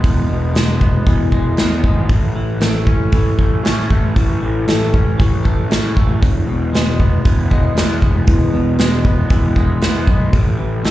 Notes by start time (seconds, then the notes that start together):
Already playing: E3 G#3 B3
0.03 E1 E2, kick, open hi-hat
0.28 E1 B2
0.54 E1 G#3, snare, open hi-hat
0.81 B3, kick
1.06 E1 E3, kick, open hi-hat
1.32 G#3, kick
1.57 E2 B3, snare, open hi-hat
1.83 G#1 G#3, kick
2.09 A1 A2, kick, open hi-hat
2.36 A1 E3
2.60 A1 A3, snare, open hi-hat
2.87 C#4, kick
3.12 A1 E3, kick, open hi-hat
3.39 A3, kick
3.63 A2 C#4, snare, open hi-hat
3.90 A1 A3, kick
4.16 A1 A2, kick, open hi-hat
4.42 A1 E3
4.67 A1 A3, snare, open hi-hat
4.93 C#4, kick
5.18 A1 E3, kick, open hi-hat
5.44 A3, kick
5.69 A2 C#4, snare, open hi-hat
5.96 A1 A3, kick
6.22 E1 E2, kick, open hi-hat
6.47 E1 B2
6.72 E1 G#3, snare, open hi-hat
7.00 B3, kick
7.25 E1 E3, kick, open hi-hat
7.51 G#3, kick
7.75 E2 B3, snare, open hi-hat
8.01 E1 G#3, kick
8.27 E1 E2, kick, open hi-hat
8.53 E1 B2
8.79 E1 G#3, snare, open hi-hat
9.05 B3, kick
9.30 E1 E3, kick, open hi-hat
9.56 G#3, kick
9.81 E2 B3, snare, open hi-hat
10.07 B1 G#3, kick
10.33 A1 A2, kick, open hi-hat
10.59 A1 E3
10.84 A1 A3, snare, open hi-hat